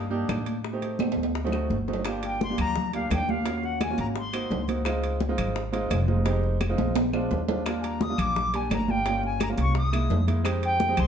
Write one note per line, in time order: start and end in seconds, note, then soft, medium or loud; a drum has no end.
0.00 0.25 G2 medium
0.10 0.54 A#3 medium
0.10 0.54 D4 medium
0.10 0.54 D#4 medium
0.10 0.54 G4 loud
0.10 high conga soft
0.29 1.11 A2 medium
0.29 high bongo medium
0.29 low bongo medium
0.29 high conga medium
0.29 high timbale medium
0.29 low timbale medium
0.29 claves medium
0.46 high conga soft
0.46 high timbale medium
0.64 high bongo medium
0.64 high conga soft
0.73 1.22 A3 medium
0.73 1.23 C4 medium
0.73 1.22 D#4 medium
0.73 1.23 G4 medium
0.82 high bongo soft
0.82 high conga soft
0.82 high timbale medium
0.99 high bongo medium
0.99 high conga medium
0.99 high timbale medium
0.99 claves medium
1.12 high timbale medium
1.16 1.66 D2 medium
1.16 high conga soft
1.23 high timbale medium
1.35 high bongo medium
1.35 high conga soft
1.44 1.75 A3 medium
1.44 1.75 C4 medium
1.44 1.75 D#4 medium
1.44 1.75 F#4 loud
1.44 low timbale medium
1.52 high bongo medium
1.52 high conga soft
1.52 claves medium
1.70 2.52 G1 medium
1.70 high bongo medium
1.70 high conga medium
1.88 2.00 A3 medium
1.88 2.00 C4 medium
1.88 2.00 D#4 medium
1.88 2.00 F#4 medium
1.88 low bongo medium
1.88 high conga soft
1.93 low timbale medium
2.05 2.36 A#3 medium
2.05 2.37 D4 medium
2.05 2.37 F4 medium
2.05 2.37 G4 loud
2.05 high bongo medium
2.05 high conga soft
2.05 high timbale medium
2.05 claves medium
2.23 2.40 G5 medium
2.23 high bongo soft
2.23 high conga soft
2.23 high timbale medium
2.41 2.58 C6 medium
2.41 high bongo medium
2.41 high conga medium
2.41 low timbale medium
2.50 2.80 A#3 medium
2.50 2.80 D4 medium
2.50 2.80 F4 medium
2.50 2.81 G4 medium
2.58 3.07 D2 medium
2.58 2.92 A#5 loud
2.58 high conga soft
2.58 low conga medium
2.58 high timbale medium
2.58 claves medium
2.76 high bongo medium
2.76 high conga soft
2.76 low conga medium
2.93 3.18 A#3 medium
2.93 3.18 D4 medium
2.93 3.18 F4 medium
2.93 3.18 G4 medium
2.93 3.11 F5 medium
2.93 high bongo soft
2.93 high timbale medium
3.11 3.93 D#2 medium
3.11 3.31 G5 medium
3.11 high bongo soft
3.11 low bongo medium
3.11 high conga medium
3.11 high timbale medium
3.11 low timbale medium
3.11 claves medium
3.28 3.41 A#3 medium
3.28 3.41 D4 medium
3.28 3.41 F4 medium
3.28 3.41 G4 medium
3.28 3.66 F5 medium
3.28 high bongo soft
3.28 high conga medium
3.45 3.76 A#3 medium
3.45 3.76 C#4 medium
3.45 3.77 F4 medium
3.45 3.77 F#4 medium
3.45 high bongo medium
3.45 high conga soft
3.45 high timbale medium
3.63 3.82 F#5 medium
3.63 high bongo soft
3.63 high conga soft
3.81 3.98 G#5 medium
3.81 high bongo medium
3.81 high conga medium
3.81 high timbale medium
3.81 low timbale medium
3.81 claves medium
3.90 4.16 A#3 medium
3.90 4.16 C#4 medium
3.90 4.16 F4 medium
3.90 4.17 F#4 medium
3.98 4.47 G#1 medium
3.98 4.06 A#5 medium
3.98 high conga medium
3.98 high timbale medium
4.16 4.66 C6 medium
4.16 high bongo medium
4.16 high conga soft
4.33 4.58 A#3 medium
4.33 4.58 C4 medium
4.33 4.58 D#4 medium
4.33 4.58 F#4 medium
4.33 high bongo soft
4.33 high conga soft
4.33 high timbale medium
4.33 claves medium
4.51 5.33 C#2 medium
4.51 high bongo soft
4.51 low bongo medium
4.51 high conga medium
4.51 low timbale medium
4.68 4.81 A#3 medium
4.68 4.81 C4 medium
4.68 4.81 D#4 medium
4.68 4.81 F#4 medium
4.68 high bongo soft
4.68 high conga medium
4.68 high timbale medium
4.85 5.17 G#3 medium
4.85 5.16 C4 medium
4.85 5.17 D#4 medium
4.85 5.17 F4 loud
4.85 high bongo medium
4.85 high conga soft
4.85 high timbale medium
4.85 claves medium
5.02 high bongo soft
5.02 high conga soft
5.02 high timbale medium
5.20 high bongo medium
5.20 high conga medium
5.20 low timbale medium
5.29 5.60 G#3 medium
5.29 5.60 C4 medium
5.29 5.60 D#4 medium
5.29 5.60 F4 loud
5.38 5.87 G#1 medium
5.38 high conga soft
5.38 low conga medium
5.38 high timbale medium
5.38 claves medium
5.56 high bongo medium
5.56 high conga soft
5.72 5.98 G#3 medium
5.72 5.97 C4 medium
5.72 5.98 D#4 medium
5.72 5.98 F4 loud
5.72 high bongo soft
5.72 high conga soft
5.72 high timbale medium
5.90 6.73 F1 medium
5.90 high bongo soft
5.90 low bongo medium
5.90 high conga medium
5.90 high timbale medium
5.90 low timbale medium
5.90 claves medium
6.08 6.21 G#3 medium
6.08 6.21 C4 medium
6.08 6.21 D#4 medium
6.08 6.21 F4 medium
6.08 high bongo soft
6.08 high conga medium
6.25 6.56 G#3 medium
6.25 6.56 C4 medium
6.25 6.56 D#4 medium
6.25 6.57 G4 loud
6.25 high bongo medium
6.25 high conga soft
6.25 high timbale medium
6.43 high bongo soft
6.43 high conga soft
6.61 high bongo medium
6.61 high conga medium
6.61 high timbale medium
6.61 low timbale medium
6.61 claves medium
6.69 6.96 G#3 medium
6.69 6.96 C4 medium
6.69 6.96 D#4 medium
6.69 6.96 F4 loud
6.78 7.27 A#1 medium
6.78 high conga medium
6.78 high timbale medium
6.96 high bongo medium
6.96 high timbale medium
7.13 7.38 G#3 medium
7.13 7.38 C4 medium
7.13 7.38 D4 medium
7.13 7.38 F4 medium
7.13 high bongo soft
7.13 high conga soft
7.13 high timbale medium
7.13 claves medium
7.31 8.13 D#2 medium
7.31 high bongo soft
7.31 low bongo medium
7.31 high conga medium
7.31 low timbale medium
7.48 7.61 G#3 medium
7.48 7.61 C4 medium
7.48 7.61 D4 medium
7.48 7.61 F4 medium
7.48 high bongo soft
7.48 high conga medium
7.48 low timbale loud
7.66 7.97 G3 medium
7.66 7.97 A#3 medium
7.66 7.97 D4 medium
7.66 7.97 F4 loud
7.66 high bongo medium
7.66 high conga soft
7.66 high timbale medium
7.66 claves medium
7.81 7.86 G#5 medium
7.81 8.04 A#5 medium
7.81 high bongo soft
7.81 high conga soft
7.81 high timbale medium
8.01 8.21 D#6 medium
8.01 high bongo medium
8.01 high conga medium
8.01 low timbale medium
8.09 8.40 G3 medium
8.09 8.40 A#3 medium
8.09 8.40 D4 medium
8.09 8.40 F4 medium
8.18 8.67 A#1 medium
8.18 8.57 D6 loud
8.18 high conga soft
8.18 low conga medium
8.18 high timbale medium
8.18 claves medium
8.36 high bongo medium
8.36 high conga soft
8.36 low conga medium
8.53 8.78 G3 medium
8.53 8.78 A#3 medium
8.53 8.78 D4 medium
8.53 8.78 G4 medium
8.53 8.72 G#5 medium
8.53 high bongo soft
8.53 high conga soft
8.53 high timbale medium
8.70 9.52 G1 medium
8.70 8.92 A#5 medium
8.70 high bongo soft
8.70 low bongo medium
8.70 high conga medium
8.70 high timbale medium
8.70 low timbale medium
8.70 claves medium
8.87 9.00 G3 medium
8.87 9.00 A#3 medium
8.87 9.00 D4 medium
8.87 9.00 F4 medium
8.87 9.24 G5 medium
8.87 high bongo soft
8.87 high conga medium
9.06 9.36 G3 medium
9.06 9.36 A#3 medium
9.06 9.36 C#4 medium
9.06 9.37 F4 medium
9.06 high bongo medium
9.06 high conga soft
9.06 high timbale medium
9.23 9.41 G#5 medium
9.23 high bongo soft
9.23 high conga soft
9.40 9.49 A#5 medium
9.40 high bongo medium
9.40 high conga loud
9.40 high timbale medium
9.40 low timbale medium
9.40 claves medium
9.49 9.75 G3 medium
9.49 9.75 A#3 medium
9.49 9.76 C#4 medium
9.49 9.76 F4 medium
9.58 10.07 C2 medium
9.58 9.76 C#6 medium
9.58 high conga medium
9.58 high timbale medium
9.75 10.25 D#6 medium
9.75 high bongo medium
9.75 high conga soft
9.92 10.17 G#3 medium
9.92 10.17 A#3 medium
9.92 10.17 D#4 medium
9.92 10.17 E4 medium
9.92 high bongo soft
9.92 high conga soft
9.92 high timbale medium
9.92 claves medium
10.10 10.92 F2 medium
10.10 high bongo soft
10.10 low bongo medium
10.10 high conga medium
10.10 low timbale medium
10.27 10.40 G#3 medium
10.27 10.40 A#3 medium
10.27 10.40 D#4 medium
10.27 10.40 E4 medium
10.27 high bongo soft
10.27 high conga medium
10.27 high timbale medium
10.44 10.75 G#3 medium
10.44 10.75 C4 medium
10.44 10.75 D#4 medium
10.44 10.76 G4 loud
10.44 high bongo medium
10.44 high conga soft
10.44 high timbale loud
10.44 claves medium
10.62 11.01 G5 loud
10.62 high bongo soft
10.62 high conga soft
10.62 high timbale medium
10.80 high bongo medium
10.80 high conga loud
10.80 low timbale medium
10.88 11.07 G#3 medium
10.88 11.07 C4 medium
10.88 11.07 D#4 medium
10.88 11.07 G4 medium
10.97 11.07 C2 medium
10.97 11.07 C6 loud
10.97 high conga soft
10.97 low conga medium
10.97 high timbale medium
10.97 claves medium